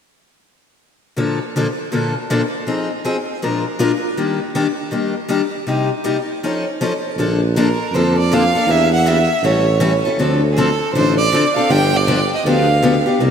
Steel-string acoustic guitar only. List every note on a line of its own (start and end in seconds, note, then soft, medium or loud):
1.16 1.38 A#2 medium
1.16 1.38 D3 soft
1.16 1.38 F3 medium
1.16 1.38 A#3 medium
1.16 1.38 D4 soft
1.16 1.38 A4 medium
1.56 1.66 A#2 medium
1.56 1.66 D3 medium
1.56 1.66 F3 medium
1.56 1.66 A#3 medium
1.56 1.66 D4 medium
1.56 1.67 A4 medium
1.92 2.13 A#2 medium
1.92 2.13 D3 soft
1.92 2.13 F3 medium
1.92 2.14 A#3 soft
1.92 2.13 D4 soft
1.92 2.14 A4 medium
2.30 2.41 A#2 medium
2.30 2.41 D3 medium
2.30 2.41 F3 medium
2.30 2.41 A#3 medium
2.30 2.41 D4 medium
2.30 2.41 A4 medium
2.67 2.88 F3 soft
2.67 2.88 C4 medium
2.67 2.88 D#4 medium
2.67 2.88 G#4 medium
3.05 3.16 F3 medium
3.05 3.16 C4 medium
3.05 3.16 D#4 medium
3.05 3.16 G#4 medium
3.42 3.63 A#2 medium
3.42 3.64 F3 medium
3.42 3.63 G#3 soft
3.42 3.64 D4 medium
3.42 3.64 F4 medium
3.42 3.64 A#4 medium
3.79 3.90 A#2 medium
3.79 3.91 F3 medium
3.79 3.91 G#3 medium
3.79 3.91 D4 medium
3.79 3.91 F4 medium
3.79 3.91 A#4 medium
4.17 4.38 D#3 medium
4.17 4.39 G3 soft
4.17 4.39 A#3 medium
4.17 4.39 D4 medium
4.17 4.39 G4 medium
4.55 4.66 D#3 medium
4.55 4.66 G3 medium
4.55 4.66 A#3 medium
4.55 4.66 D4 medium
4.55 4.67 G4 medium
4.91 5.13 D#3 medium
4.91 5.13 G3 soft
4.91 5.14 A#3 medium
4.91 5.14 D4 medium
4.91 5.14 G4 medium
5.28 5.40 D#3 medium
5.28 5.41 G3 medium
5.28 5.41 A#3 medium
5.28 5.41 D4 medium
5.28 5.41 G4 medium
5.67 5.88 C3 medium
5.67 5.88 G3 soft
5.67 5.89 A#3 medium
5.67 5.89 D#4 soft
5.67 5.89 G4 medium
6.04 6.16 C3 medium
6.04 6.16 G3 medium
6.04 6.16 A#3 medium
6.04 6.17 D#4 medium
6.04 6.16 G4 medium
6.43 6.64 F3 medium
6.43 6.65 C#4 medium
6.43 6.65 D#4 medium
6.43 6.65 A4 medium
6.81 6.92 F3 medium
6.81 6.92 C#4 medium
6.81 6.92 D#4 medium
6.81 6.92 A4 medium
7.18 7.39 D3 medium
7.18 7.40 F3 medium
7.18 7.40 A#3 soft
7.18 7.40 D4 medium
7.18 7.40 A4 medium
7.56 7.67 D3 medium
7.56 7.67 F3 medium
7.56 7.68 A#3 medium
7.56 7.67 D4 medium
7.56 7.68 A4 medium
7.94 8.15 D3 medium
7.94 8.15 F3 medium
7.94 8.16 A#3 medium
7.94 8.16 D4 medium
7.94 8.16 A4 medium
8.32 8.42 D3 medium
8.32 8.43 F3 medium
8.32 8.43 A#3 medium
8.32 8.43 D4 medium
8.32 8.43 A4 medium
8.55 8.67 A#3 soft
8.55 8.67 D4 soft
8.55 8.68 A4 medium
8.67 8.89 E3 soft
8.67 8.89 A#3 medium
8.67 8.90 D4 medium
8.67 8.90 G4 medium
9.06 9.17 E3 medium
9.06 9.17 A#3 medium
9.06 9.18 D4 medium
9.06 9.18 G4 medium
9.44 9.65 E3 medium
9.44 9.65 G3 medium
9.44 9.65 C#4 medium
9.44 9.65 E4 medium
9.44 9.66 A4 medium
9.80 9.92 E3 medium
9.80 9.92 G3 medium
9.80 9.92 C#4 medium
9.80 9.92 E4 medium
9.80 9.92 A4 medium
10.05 10.19 C#4 soft
10.05 10.19 E4 soft
10.05 10.18 A4 medium
10.19 10.40 D3 medium
10.19 10.40 F3 medium
10.19 10.40 C4 medium
10.19 10.41 D4 medium
10.19 10.41 A4 medium
10.57 10.68 D3 medium
10.57 10.68 F3 medium
10.57 10.68 C4 medium
10.57 10.69 D4 medium
10.57 10.69 A4 medium
10.95 11.16 D3 medium
10.95 11.16 F3 medium
10.95 11.16 C4 medium
10.95 11.16 D4 medium
10.95 11.17 A4 medium
11.32 11.43 D3 medium
11.32 11.43 F3 medium
11.32 11.43 C4 medium
11.32 11.44 D4 medium
11.32 11.44 A4 medium
11.56 11.70 C4 soft
11.56 11.69 D4 medium
11.56 11.69 A4 medium
11.69 11.91 D3 medium
11.69 11.91 F3 medium
11.69 11.91 B3 medium
11.69 11.91 D4 medium
11.69 11.91 G4 medium
12.07 12.18 D3 medium
12.07 12.19 F3 medium
12.07 12.19 B3 medium
12.07 12.19 D4 medium
12.07 12.19 G4 medium
12.46 12.67 D3 medium
12.46 12.67 F3 medium
12.46 12.67 B3 medium
12.46 12.67 D4 medium
12.46 12.67 G4 medium
12.83 12.94 D3 medium
12.83 12.94 F3 medium
12.83 12.94 B3 medium
12.83 12.94 D4 medium
12.83 12.94 G4 medium
13.06 13.20 B3 soft
13.06 13.20 D4 soft
13.06 13.19 G4 medium
13.20 13.31 C3 medium
13.20 13.31 G3 medium
13.20 13.31 A#3 medium
13.20 13.31 D#4 medium
13.20 13.31 G4 medium